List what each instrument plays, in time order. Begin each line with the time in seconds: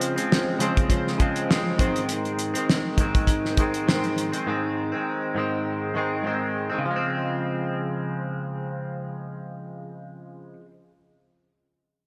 Already playing: clean electric guitar C#3 F3 G#3 C4, synth keys G#3 C#4 F4 C5
0.01 closed hi-hat
0.16 clean electric guitar G#3 C4, closed hi-hat
0.20 clean electric guitar F3
0.32 snare
0.59 clean electric guitar C#3 F3 G#3, synth keys G#3 C#4 F4 C5, closed hi-hat
0.63 clean electric guitar C4
0.77 kick, closed hi-hat
0.89 synth keys G#3 C#4 F4 C5, kick, closed hi-hat
1.07 snare
1.18 clean electric guitar C#3 F3 G#3, kick, closed hi-hat
1.22 clean electric guitar C4
1.36 closed hi-hat
1.49 clean electric guitar C#3 F3 G#3, snare
1.53 clean electric guitar C4
1.77 clean electric guitar G#2 D#3 G#3, synth keys G#3 C4 D#4 C5, kick, closed hi-hat
1.81 clean electric guitar C4
1.96 closed hi-hat
2.09 closed hi-hat
2.25 closed hi-hat
2.39 closed hi-hat
2.54 clean electric guitar D#3 G#3 C4, closed hi-hat
2.69 snare
2.98 clean electric guitar G#2 D#3 G#3 C4, kick, closed hi-hat
3.15 kick, closed hi-hat
3.27 kick, closed hi-hat
3.45 snare
3.57 clean electric guitar G#2 D#3 G#3, kick, closed hi-hat
3.61 clean electric guitar C4
3.74 closed hi-hat
3.86 clean electric guitar G#2 D#3 G#3 C4, snare
4.04 closed hi-hat
4.18 closed hi-hat
4.32 clean electric guitar D#3 G#3 C4, closed hi-hat
4.47 clean electric guitar G#2 D#3 G#3 C4
4.92 clean electric guitar D#3 G#3 C4
5.35 clean electric guitar G#2 D#3 G#3
5.39 clean electric guitar C4
5.94 clean electric guitar G#2 D#3 G#3
5.98 clean electric guitar C4
6.23 clean electric guitar G#2 D#3 G#3 C4
6.70 clean electric guitar G#3 C4
6.74 clean electric guitar D#3
6.78 clean electric guitar C#3
6.85 clean electric guitar F3
6.91 clean electric guitar G#3
6.96 clean electric guitar C4